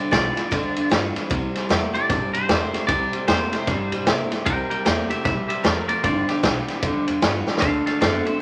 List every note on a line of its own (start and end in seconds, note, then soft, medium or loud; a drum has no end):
0.00 0.11 G2 medium
0.00 0.11 D3 medium
0.00 0.11 D5 medium
0.11 0.28 B1 medium
0.11 0.35 G2 medium
0.11 0.35 G3 medium
0.11 0.36 B3 loud
0.11 0.34 F4 loud
0.11 0.89 D5 loud
0.11 kick medium
0.11 snare loud
0.11 ride medium
0.35 0.50 G2 medium
0.35 0.51 E3 medium
0.35 0.51 B3 medium
0.35 0.51 F4 medium
0.35 muted upright bass stroke medium
0.35 snare soft
0.35 ride medium
0.51 0.67 D2 medium
0.51 0.74 G2 medium
0.51 1.27 D3 loud
0.51 0.74 D3 loud
0.51 kick loud
0.51 snare soft
0.51 ride medium
0.76 0.86 E2 medium
0.76 0.90 G2 medium
0.76 0.90 D3 medium
0.76 ride medium
0.89 1.14 G2 medium
0.89 1.07 G2 medium
0.89 1.14 E3 medium
0.89 1.14 G3 medium
0.89 1.15 B3 medium
0.89 1.13 F4 loud
0.89 snare loud
0.89 ride medium
1.15 1.29 G2 medium
1.15 1.30 E3 medium
1.15 1.30 B3 soft
1.15 1.30 F4 medium
1.15 snare soft
1.15 ride medium
1.30 1.46 C2 loud
1.30 2.06 C3 loud
1.30 1.53 C3 medium
1.30 1.53 G3 medium
1.30 kick loud
1.30 ride medium
1.55 1.69 C3 medium
1.55 1.69 G3 medium
1.55 snare soft
1.55 ride medium
1.69 1.85 E2 medium
1.69 1.92 C3 medium
1.69 1.93 G3 medium
1.69 1.92 A3 medium
1.69 1.94 A#3 medium
1.69 1.94 E4 medium
1.69 1.93 G4 loud
1.69 snare loud
1.69 ride medium
1.94 2.08 C3 medium
1.94 2.08 A3 medium
1.94 2.10 E4 medium
1.94 2.09 G4 medium
1.94 2.33 D5 loud
1.94 muted upright bass stroke medium
1.94 ride medium
2.10 2.25 A#1 medium
2.10 2.86 G2 medium
2.10 2.32 C3 medium
2.10 2.32 G3 loud
2.10 kick loud
2.10 snare soft
2.10 ride medium
2.33 2.47 C3 medium
2.33 2.48 G3 medium
2.33 2.87 C5 medium
2.33 muted upright bass stroke medium
2.33 ride medium
2.48 2.64 E2 medium
2.48 2.71 C3 medium
2.48 2.73 G3 medium
2.48 2.71 A3 medium
2.48 2.73 A#3 medium
2.48 2.73 E4 medium
2.48 2.72 G4 medium
2.48 snare loud
2.48 ride medium
2.73 2.87 C3 medium
2.73 2.87 A3 medium
2.73 2.89 E4 soft
2.73 2.88 G4 medium
2.73 muted upright bass stroke medium
2.73 snare soft
2.73 ride medium
2.87 3.04 C2 medium
2.87 3.11 C3 medium
2.87 3.65 C3 loud
2.87 3.11 G3 loud
2.87 3.26 D5 loud
2.87 kick loud
2.87 ride loud
3.13 3.27 C3 medium
3.13 3.27 G3 loud
3.13 muted upright bass stroke medium
3.13 ride medium
3.28 3.43 E2 medium
3.28 3.50 C3 medium
3.28 3.52 G3 medium
3.28 3.51 A3 loud
3.28 3.52 A#3 loud
3.28 3.52 E4 medium
3.28 3.51 G4 loud
3.28 4.04 C5 loud
3.28 snare loud
3.28 ride medium
3.52 3.66 C3 medium
3.52 3.66 A3 medium
3.52 3.68 E4 medium
3.52 3.67 G4 medium
3.52 snare soft
3.52 ride medium
3.67 4.43 G2 loud
3.67 3.83 G2 loud
3.67 3.90 C3 medium
3.67 3.90 G3 loud
3.67 kick loud
3.67 snare soft
3.67 ride medium
3.91 4.01 A2 medium
3.91 4.06 C3 medium
3.91 4.06 G3 medium
3.91 ride medium
4.06 4.22 C3 loud
4.06 4.29 C3 medium
4.06 4.30 G3 medium
4.06 4.29 A3 medium
4.06 4.31 A#3 medium
4.06 4.31 E4 medium
4.06 4.30 G4 loud
4.06 snare loud
4.06 ride medium
4.31 4.45 C3 medium
4.31 4.45 A3 medium
4.31 4.46 E4 medium
4.31 4.45 G4 medium
4.31 muted upright bass stroke medium
4.31 snare soft
4.31 ride medium
4.46 4.62 C2 loud
4.46 5.22 C3 loud
4.46 4.68 C3 loud
4.46 4.69 G3 medium
4.46 4.69 A#4 loud
4.46 4.69 G5 loud
4.46 kick loud
4.46 ride loud
4.70 4.84 C3 medium
4.70 4.84 G3 loud
4.70 4.84 A#4 loud
4.70 4.84 G5 loud
4.70 muted upright bass stroke medium
4.70 ride medium
4.85 5.01 E2 medium
4.85 5.08 C3 medium
4.85 5.09 G3 loud
4.85 5.08 A3 loud
4.85 5.09 A#3 medium
4.85 5.10 E4 loud
4.85 5.09 G4 loud
4.85 5.08 A#4 medium
4.85 5.10 G5 loud
4.85 snare loud
4.85 ride medium
5.09 5.23 C3 medium
5.09 5.24 A3 medium
5.09 5.25 E4 medium
5.09 5.23 G4 medium
5.09 5.25 G4 medium
5.09 5.24 E5 medium
5.09 muted upright bass stroke medium
5.09 ride medium
5.24 5.40 A#1 loud
5.24 5.47 C3 loud
5.24 5.63 E3 loud
5.24 5.47 G3 loud
5.24 5.47 G4 medium
5.24 5.48 E5 medium
5.24 kick loud
5.24 snare soft
5.24 ride medium
5.48 5.63 C3 medium
5.48 5.63 G3 medium
5.48 5.63 G4 medium
5.48 5.64 E5 loud
5.48 muted upright bass stroke medium
5.48 ride medium
5.63 5.80 E2 medium
5.63 5.87 C3 medium
5.63 6.02 F3 medium
5.63 5.87 A3 medium
5.63 5.87 A#4 medium
5.63 5.87 D5 medium
5.63 snare loud
5.63 ride medium
5.88 6.03 C3 medium
5.88 6.03 A3 medium
5.88 6.03 A#4 medium
5.88 6.02 D5 loud
5.88 muted upright bass stroke medium
5.88 ride medium
6.03 6.19 G1 loud
6.03 6.26 G2 medium
6.03 6.26 D3 medium
6.03 6.42 G3 medium
6.03 6.27 F4 medium
6.03 6.28 D5 loud
6.03 kick loud
6.03 ride medium
6.28 6.42 G2 medium
6.28 6.42 D3 medium
6.28 7.05 G4 loud
6.28 snare soft
6.28 ride medium
6.43 6.59 B1 medium
6.43 6.66 G2 medium
6.43 6.66 E3 medium
6.43 6.81 G3 loud
6.43 6.82 B3 loud
6.43 6.82 F4 loud
6.43 kick medium
6.43 snare loud
6.43 ride medium
6.68 6.81 G2 medium
6.68 6.82 E3 medium
6.68 snare soft
6.68 ride medium
6.82 6.98 D2 medium
6.82 7.05 G2 medium
6.82 7.59 D3 medium
6.82 7.05 D3 loud
6.82 kick loud
6.82 ride medium
7.07 7.17 E2 loud
7.07 7.21 G2 medium
7.07 7.21 D3 medium
7.07 ride medium
7.22 7.44 G2 medium
7.22 7.38 G2 medium
7.22 7.45 E3 medium
7.22 7.46 G3 medium
7.22 7.46 B3 medium
7.22 7.45 F4 medium
7.22 snare loud
7.22 ride medium
7.47 7.61 G2 medium
7.47 7.61 E3 medium
7.47 7.62 B3 soft
7.47 7.61 F4 medium
7.47 snare medium
7.57 7.85 A4 medium
7.57 7.85 F5 loud
7.57 snare loud
7.62 7.77 D2 loud
7.62 7.84 D3 medium
7.62 7.99 D3 medium
7.62 7.84 A3 medium
7.62 kick loud
7.62 ride medium
7.86 8.00 D3 medium
7.86 8.00 A3 medium
7.86 8.00 A4 medium
7.86 8.00 F5 medium
7.86 muted upright bass stroke medium
7.86 snare soft
7.86 ride medium
8.00 8.17 F#2 medium
8.00 8.25 D3 medium
8.00 8.23 D3 medium
8.00 8.25 A3 loud
8.00 8.24 B3 medium
8.00 8.25 C4 loud
8.00 8.24 F#4 loud
8.00 8.26 A4 loud
8.00 8.26 F5 loud
8.00 snare loud
8.00 ride medium
8.25 8.39 D3 medium
8.25 8.40 B3 medium
8.25 8.41 C4 medium
8.25 8.40 F#4 medium
8.25 8.39 C5 medium
8.25 8.40 E5 loud
8.25 ride medium